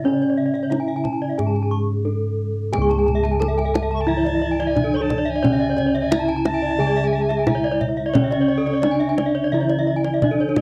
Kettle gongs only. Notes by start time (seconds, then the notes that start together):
Already playing: C#3
0.06 C#4
0.72 D4
1.39 G#2
2.05 D4
2.73 G#4
2.78 C#2
3.40 D4
4.76 D4
5.44 C#4
6.12 D4
6.79 C#3
7.48 D4
8.15 C#4
8.83 D4
9.52 C#3
10.23 D4